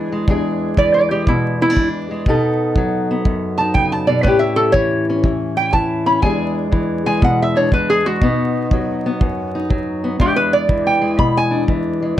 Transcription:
Already playing: E2 E3 G#3 D4 G#4
0.12 G#3
0.28 E2 G#3 D4 G#4, kick
0.77 E3 D5, kick
0.94 D5
1.11 G#3 G4
1.27 B2 E4, kick
1.61 B3 E4
1.70 D4
1.77 E3, kick
2.11 G#3
2.26 B2 B3 D#4 A4, kick
2.76 F#3, kick
3.11 B3
3.25 F#2, kick
3.58 D#4 A5
3.74 C#3 G5, kick
3.92 A5
4.07 B2 D5
4.23 A2 C#4 E4 B4, kick
4.28 G4
4.39 E5
4.56 A4
4.72 E3 C#5, kick
5.10 C#4
5.24 E3, kick
5.57 E4 G5
5.73 E3 A5, kick
6.06 C#4 B5
6.22 E2 G#3 D4 G#4 G#5, kick
6.72 E3, kick
7.06 G#3 G#5
7.22 B2 F#5, kick
7.42 E5
7.56 D4 C#5
7.72 E3 B4, kick
7.90 G#4
8.06 G#3 F#4
8.21 B2 B3 D#4, kick
8.71 F#3, kick
9.06 B3
9.21 F#2, kick
9.55 D#4
9.70 F#3, kick
10.04 B3
10.19 E2 G#3 D4 G4, kick
10.36 B4
10.53 D5
10.69 E3, kick
10.87 G5
11.01 G#3
11.18 B2 B5, kick
11.37 G#5
11.51 D4
11.68 E3, kick
12.02 G#3

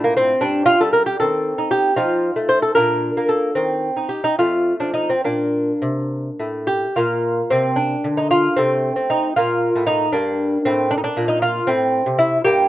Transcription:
Already playing: A2
0.04 A#3
0.17 C4
0.41 G2 D4
0.66 F4
0.81 G3 A4
0.93 A#4
1.06 G4
1.20 D#3 C4 A4
1.58 D#4
1.71 G4
1.96 F3 D#4 F4
2.36 A3
2.49 C5
2.62 A4
2.75 A#2 D4 A#4
3.17 A#3
3.29 A4
3.55 D#3 C4
3.97 D#4
4.09 G4
4.24 D#4
4.39 F2 A3 F4
4.80 F3 D4
4.94 D#4
5.10 C4
5.24 A#2 A#3 D4
5.82 C3
6.40 A2
6.67 G4
6.96 A#2 A#3 F4
7.50 C3 C4
7.76 D4
8.04 D3
8.17 D#4
8.31 F4
8.56 C3 A3 C4
8.96 C4
9.10 D#4
9.36 A#2 A#3 F4
9.76 A2
9.87 D#4
10.12 G2 A#3 D4
10.65 A2 C4
10.91 D4
10.98 D#4
11.04 D4
11.17 A#2
11.28 D#4
11.42 F4
11.67 A2 C4
12.06 C3
12.19 E4
12.45 G2 A#3 G4

